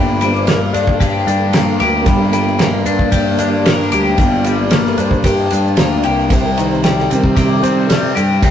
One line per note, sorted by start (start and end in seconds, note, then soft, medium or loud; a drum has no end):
0.00 0.70 G1 loud
0.00 0.21 G2 medium
0.00 2.06 G2 medium
0.00 0.83 D3 medium
0.00 2.99 D#3 medium
0.00 0.21 G3 medium
0.00 0.30 G3 medium
0.00 1.47 G3 medium
0.00 0.31 A#3 soft
0.00 0.47 A#3 medium
0.00 0.31 D4 medium
0.00 0.73 D4 medium
0.00 1.00 G4 medium
0.21 2.69 G2 medium
0.21 2.33 G3 medium
0.21 0.49 C5 medium
0.21 ride medium
0.21 maracas medium
0.35 maracas soft
0.47 1.53 A#3 medium
0.47 0.61 A#4 medium
0.47 snare loud
0.47 ride medium
0.47 maracas medium
0.73 1.23 G2 loud
0.73 1.27 D4 medium
0.73 0.99 A4 medium
0.73 ride medium
0.73 maracas medium
0.83 3.31 D3 medium
0.87 kick medium
1.00 1.80 G4 medium
1.00 1.28 G4 medium
1.00 kick loud
1.00 ride medium
1.00 maracas medium
1.27 1.76 G2 loud
1.27 2.85 D4 medium
1.27 1.82 A4 medium
1.27 ride medium
1.27 maracas medium
1.47 2.09 G3 medium
1.53 2.58 A#3 medium
1.53 snare loud
1.53 ride medium
1.53 maracas medium
1.80 2.04 D2 medium
1.80 3.12 G4 medium
1.80 2.08 A#4 medium
1.80 snare soft
1.80 ride medium
2.03 2.82 G1 medium
2.03 3.39 G2 medium
2.03 4.13 G3 medium
2.03 4.13 A#3 soft
2.03 4.13 D4 medium
2.03 2.30 G4 medium
2.03 kick loud
2.03 ride medium
2.08 3.97 G3 medium
2.08 maracas medium
2.32 4.45 G3 medium
2.32 2.44 A4 medium
2.32 ride medium
2.32 maracas medium
2.48 maracas soft
2.59 3.65 A#3 medium
2.59 3.09 A#4 medium
2.59 snare loud
2.59 ride medium
2.59 maracas medium
2.69 5.18 G2 medium
2.86 3.35 G2 loud
2.86 3.38 D4 medium
2.86 ride medium
2.86 maracas medium
2.99 kick medium
3.12 3.92 G4 medium
3.12 kick medium
3.12 ride medium
3.12 maracas medium
3.32 8.51 D3 medium
3.38 3.88 G2 medium
3.38 4.72 D4 medium
3.38 ride medium
3.38 maracas medium
3.66 4.70 A#3 medium
3.66 snare loud
3.66 ride loud
3.66 maracas medium
3.92 4.17 D2 medium
3.92 5.24 G4 medium
3.92 ride medium
3.92 maracas medium
3.97 4.59 G3 medium
4.18 4.94 G1 loud
4.18 5.51 G2 medium
4.18 4.55 G3 soft
4.18 4.55 A#3 soft
4.18 4.55 D4 medium
4.18 kick loud
4.18 ride medium
4.18 maracas medium
4.44 6.57 G3 medium
4.44 ride medium
4.44 maracas medium
4.49 4.75 G4 medium
4.59 6.46 G3 medium
4.71 5.77 A#3 medium
4.71 snare loud
4.71 ride medium
4.71 maracas medium
4.75 4.87 A#4 medium
4.85 5.00 A4 medium
4.85 snare soft
4.98 5.47 G2 medium
4.98 5.51 D4 medium
4.98 5.27 C5 medium
4.98 ride medium
4.98 maracas loud
5.11 kick medium
5.11 maracas soft
5.19 7.73 G2 medium
5.24 6.04 G4 medium
5.24 5.39 A#4 medium
5.24 kick medium
5.24 ride medium
5.24 maracas medium
5.39 5.45 D#5 medium
5.50 5.76 G2 medium
5.50 6.31 D4 medium
5.50 5.80 D5 medium
5.50 ride medium
5.50 maracas loud
5.67 maracas soft
5.77 6.02 D2 medium
5.77 6.31 A#3 medium
5.77 5.92 C5 medium
5.77 snare loud
5.77 ride medium
5.77 maracas medium
5.92 6.04 D5 loud
6.03 6.29 C2 medium
6.03 7.35 G4 medium
6.03 6.33 A#4 medium
6.03 ride medium
6.20 maracas soft
6.30 7.06 C2 medium
6.30 8.43 C3 medium
6.30 6.43 C5 medium
6.30 kick loud
6.30 ride medium
6.30 maracas medium
6.45 7.08 G3 medium
6.45 6.51 A#4 medium
6.57 7.90 D#3 medium
6.57 7.00 C5 loud
6.57 ride medium
6.57 maracas medium
6.74 maracas soft
6.84 7.89 G3 medium
6.84 snare medium
6.84 ride medium
6.84 maracas medium
6.99 7.12 A4 medium
6.99 snare soft
7.08 8.51 G3 medium
7.08 7.63 C4 medium
7.08 ride medium
7.08 maracas medium
7.12 7.60 C3 medium
7.12 7.87 G3 soft
7.12 7.87 C4 soft
7.12 7.88 D#4 medium
7.12 7.26 A#4 medium
7.24 kick medium
7.36 8.15 G4 medium
7.36 7.51 G4 medium
7.36 kick loud
7.36 ride medium
7.36 maracas medium
7.54 8.27 A4 medium
7.63 8.12 C3 medium
7.63 8.51 C4 medium
7.63 ride medium
7.63 maracas medium
7.73 8.51 G2 medium
7.89 8.51 G3 medium
7.89 snare loud
7.89 ride loud
7.89 maracas medium
8.15 8.40 G2 medium
8.15 8.51 G4 medium
8.15 ride medium
8.15 maracas medium
8.42 8.51 C2 loud
8.42 8.51 C3 medium
8.42 kick loud
8.42 ride loud
8.42 maracas medium